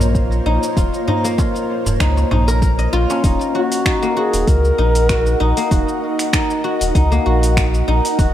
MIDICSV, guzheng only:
0, 0, Header, 1, 2, 480
1, 0, Start_track
1, 0, Tempo, 618557
1, 594, Time_signature, 4, 2, 24, 8
1, 6470, End_track
2, 0, Start_track
2, 0, Title_t, "Guzheng"
2, 0, Program_c, 0, 107
2, 0, Note_on_c, 0, 58, 75
2, 0, Note_on_c, 0, 63, 85
2, 0, Note_on_c, 0, 65, 72
2, 353, Note_off_c, 0, 63, 0
2, 356, Note_on_c, 0, 63, 83
2, 593, Note_off_c, 0, 65, 0
2, 596, Note_on_c, 0, 65, 79
2, 831, Note_off_c, 0, 63, 0
2, 834, Note_on_c, 0, 63, 72
2, 961, Note_off_c, 0, 58, 0
2, 964, Note_on_c, 0, 58, 71
2, 1069, Note_off_c, 0, 65, 0
2, 1072, Note_on_c, 0, 65, 82
2, 1550, Note_off_c, 0, 63, 0
2, 1553, Note_on_c, 0, 63, 78
2, 1790, Note_off_c, 0, 63, 0
2, 1793, Note_on_c, 0, 63, 66
2, 1923, Note_on_c, 0, 70, 94
2, 2030, Note_off_c, 0, 70, 0
2, 2033, Note_on_c, 0, 70, 78
2, 2163, Note_on_c, 0, 75, 98
2, 2269, Note_off_c, 0, 65, 0
2, 2272, Note_on_c, 0, 65, 105
2, 2404, Note_on_c, 0, 61, 76
2, 2509, Note_off_c, 0, 63, 0
2, 2512, Note_on_c, 0, 63, 74
2, 2753, Note_on_c, 0, 66, 71
2, 2800, Note_off_c, 0, 65, 0
2, 2990, Note_off_c, 0, 63, 0
2, 2993, Note_on_c, 0, 63, 80
2, 3120, Note_off_c, 0, 58, 0
2, 3123, Note_on_c, 0, 58, 79
2, 3230, Note_off_c, 0, 66, 0
2, 3233, Note_on_c, 0, 66, 77
2, 3547, Note_off_c, 0, 75, 0
2, 3679, Note_off_c, 0, 70, 0
2, 3709, Note_off_c, 0, 63, 0
2, 3712, Note_on_c, 0, 63, 72
2, 3948, Note_off_c, 0, 66, 0
2, 3951, Note_on_c, 0, 66, 78
2, 4188, Note_off_c, 0, 63, 0
2, 4191, Note_on_c, 0, 63, 78
2, 4319, Note_off_c, 0, 58, 0
2, 4322, Note_on_c, 0, 58, 76
2, 4428, Note_off_c, 0, 66, 0
2, 4431, Note_on_c, 0, 66, 80
2, 4652, Note_off_c, 0, 61, 0
2, 4908, Note_off_c, 0, 63, 0
2, 4911, Note_on_c, 0, 63, 80
2, 5150, Note_off_c, 0, 66, 0
2, 5153, Note_on_c, 0, 66, 74
2, 5389, Note_off_c, 0, 63, 0
2, 5393, Note_on_c, 0, 63, 81
2, 5520, Note_off_c, 0, 58, 0
2, 5523, Note_on_c, 0, 58, 76
2, 5629, Note_off_c, 0, 66, 0
2, 5632, Note_on_c, 0, 66, 70
2, 6110, Note_off_c, 0, 63, 0
2, 6113, Note_on_c, 0, 63, 79
2, 6349, Note_off_c, 0, 66, 0
2, 6352, Note_on_c, 0, 66, 80
2, 6470, Note_off_c, 0, 58, 0
2, 6470, Note_off_c, 0, 63, 0
2, 6470, Note_off_c, 0, 66, 0
2, 6470, End_track
0, 0, End_of_file